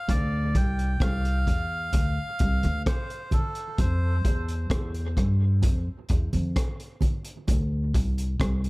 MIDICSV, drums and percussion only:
0, 0, Header, 1, 2, 480
1, 0, Start_track
1, 0, Key_signature, -1, "minor"
1, 0, Tempo, 924357
1, 44, Time_signature, 4, 2, 24, 8
1, 4516, End_track
2, 0, Start_track
2, 0, Title_t, "Drums"
2, 43, Note_on_c, 9, 64, 74
2, 45, Note_on_c, 9, 36, 114
2, 46, Note_on_c, 9, 42, 85
2, 95, Note_off_c, 9, 64, 0
2, 97, Note_off_c, 9, 36, 0
2, 98, Note_off_c, 9, 42, 0
2, 285, Note_on_c, 9, 36, 96
2, 287, Note_on_c, 9, 42, 84
2, 337, Note_off_c, 9, 36, 0
2, 339, Note_off_c, 9, 42, 0
2, 410, Note_on_c, 9, 42, 56
2, 462, Note_off_c, 9, 42, 0
2, 520, Note_on_c, 9, 36, 103
2, 526, Note_on_c, 9, 42, 81
2, 528, Note_on_c, 9, 37, 107
2, 572, Note_off_c, 9, 36, 0
2, 578, Note_off_c, 9, 42, 0
2, 580, Note_off_c, 9, 37, 0
2, 649, Note_on_c, 9, 42, 52
2, 701, Note_off_c, 9, 42, 0
2, 764, Note_on_c, 9, 36, 85
2, 767, Note_on_c, 9, 42, 75
2, 816, Note_off_c, 9, 36, 0
2, 819, Note_off_c, 9, 42, 0
2, 1000, Note_on_c, 9, 64, 84
2, 1002, Note_on_c, 9, 42, 104
2, 1007, Note_on_c, 9, 36, 116
2, 1052, Note_off_c, 9, 64, 0
2, 1054, Note_off_c, 9, 42, 0
2, 1059, Note_off_c, 9, 36, 0
2, 1241, Note_on_c, 9, 42, 69
2, 1247, Note_on_c, 9, 36, 100
2, 1293, Note_off_c, 9, 42, 0
2, 1299, Note_off_c, 9, 36, 0
2, 1366, Note_on_c, 9, 42, 55
2, 1368, Note_on_c, 9, 63, 80
2, 1418, Note_off_c, 9, 42, 0
2, 1420, Note_off_c, 9, 63, 0
2, 1487, Note_on_c, 9, 36, 120
2, 1488, Note_on_c, 9, 42, 102
2, 1489, Note_on_c, 9, 37, 126
2, 1539, Note_off_c, 9, 36, 0
2, 1540, Note_off_c, 9, 42, 0
2, 1541, Note_off_c, 9, 37, 0
2, 1611, Note_on_c, 9, 42, 53
2, 1663, Note_off_c, 9, 42, 0
2, 1720, Note_on_c, 9, 63, 70
2, 1720, Note_on_c, 9, 64, 70
2, 1724, Note_on_c, 9, 42, 63
2, 1726, Note_on_c, 9, 36, 85
2, 1772, Note_off_c, 9, 63, 0
2, 1772, Note_off_c, 9, 64, 0
2, 1776, Note_off_c, 9, 42, 0
2, 1777, Note_off_c, 9, 36, 0
2, 1844, Note_on_c, 9, 42, 57
2, 1896, Note_off_c, 9, 42, 0
2, 1965, Note_on_c, 9, 36, 105
2, 1965, Note_on_c, 9, 42, 91
2, 1965, Note_on_c, 9, 64, 78
2, 2016, Note_off_c, 9, 42, 0
2, 2017, Note_off_c, 9, 36, 0
2, 2017, Note_off_c, 9, 64, 0
2, 2206, Note_on_c, 9, 36, 87
2, 2206, Note_on_c, 9, 42, 96
2, 2258, Note_off_c, 9, 36, 0
2, 2258, Note_off_c, 9, 42, 0
2, 2329, Note_on_c, 9, 42, 53
2, 2381, Note_off_c, 9, 42, 0
2, 2440, Note_on_c, 9, 36, 102
2, 2444, Note_on_c, 9, 42, 81
2, 2447, Note_on_c, 9, 37, 96
2, 2492, Note_off_c, 9, 36, 0
2, 2496, Note_off_c, 9, 42, 0
2, 2499, Note_off_c, 9, 37, 0
2, 2568, Note_on_c, 9, 42, 55
2, 2620, Note_off_c, 9, 42, 0
2, 2684, Note_on_c, 9, 36, 85
2, 2686, Note_on_c, 9, 42, 72
2, 2689, Note_on_c, 9, 37, 63
2, 2736, Note_off_c, 9, 36, 0
2, 2738, Note_off_c, 9, 42, 0
2, 2740, Note_off_c, 9, 37, 0
2, 2919, Note_on_c, 9, 64, 84
2, 2922, Note_on_c, 9, 42, 100
2, 2926, Note_on_c, 9, 36, 126
2, 2971, Note_off_c, 9, 64, 0
2, 2974, Note_off_c, 9, 42, 0
2, 2978, Note_off_c, 9, 36, 0
2, 3161, Note_on_c, 9, 42, 76
2, 3167, Note_on_c, 9, 36, 93
2, 3213, Note_off_c, 9, 42, 0
2, 3219, Note_off_c, 9, 36, 0
2, 3286, Note_on_c, 9, 63, 84
2, 3287, Note_on_c, 9, 42, 58
2, 3338, Note_off_c, 9, 63, 0
2, 3339, Note_off_c, 9, 42, 0
2, 3406, Note_on_c, 9, 36, 109
2, 3408, Note_on_c, 9, 42, 100
2, 3409, Note_on_c, 9, 37, 120
2, 3458, Note_off_c, 9, 36, 0
2, 3460, Note_off_c, 9, 42, 0
2, 3461, Note_off_c, 9, 37, 0
2, 3530, Note_on_c, 9, 42, 56
2, 3582, Note_off_c, 9, 42, 0
2, 3638, Note_on_c, 9, 63, 69
2, 3638, Note_on_c, 9, 64, 73
2, 3644, Note_on_c, 9, 42, 61
2, 3645, Note_on_c, 9, 36, 80
2, 3690, Note_off_c, 9, 63, 0
2, 3690, Note_off_c, 9, 64, 0
2, 3696, Note_off_c, 9, 42, 0
2, 3697, Note_off_c, 9, 36, 0
2, 3763, Note_on_c, 9, 42, 57
2, 3814, Note_off_c, 9, 42, 0
2, 3882, Note_on_c, 9, 64, 77
2, 3884, Note_on_c, 9, 42, 92
2, 3885, Note_on_c, 9, 36, 109
2, 3934, Note_off_c, 9, 64, 0
2, 3936, Note_off_c, 9, 42, 0
2, 3937, Note_off_c, 9, 36, 0
2, 4125, Note_on_c, 9, 36, 88
2, 4126, Note_on_c, 9, 42, 94
2, 4177, Note_off_c, 9, 36, 0
2, 4178, Note_off_c, 9, 42, 0
2, 4248, Note_on_c, 9, 42, 58
2, 4300, Note_off_c, 9, 42, 0
2, 4360, Note_on_c, 9, 36, 100
2, 4364, Note_on_c, 9, 42, 82
2, 4367, Note_on_c, 9, 37, 104
2, 4412, Note_off_c, 9, 36, 0
2, 4416, Note_off_c, 9, 42, 0
2, 4419, Note_off_c, 9, 37, 0
2, 4487, Note_on_c, 9, 42, 52
2, 4516, Note_off_c, 9, 42, 0
2, 4516, End_track
0, 0, End_of_file